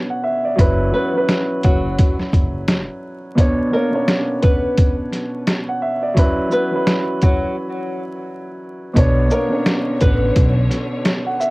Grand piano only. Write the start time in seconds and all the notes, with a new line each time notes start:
Already playing: B2 B3 C#4 D4 C#5
0.10 F#5
0.24 E5
0.45 D5
0.56 F#3 C#4 E4
0.61 B4
0.91 F#3 C#4 E4
0.96 B4
1.13 F#3 C#4 E4
1.18 B4
3.35 B2 B3 D4
3.40 C#5
3.70 B2 B3 D4
3.75 C#5
3.90 B2 C#4 D4
3.95 C#5
5.69 F#5
5.82 E5
6.03 D5
6.14 F#3 C#4 E4
6.19 B4
6.49 F#3 C#4 E4
6.54 B4
6.71 F#3 C#4 E4
6.76 B4
8.93 B2 B3 D4
8.98 C#5
9.28 B2 B3 D4
9.33 C#5
9.48 B2 C#4 D4
9.53 C#5
11.26 F#5
11.40 E5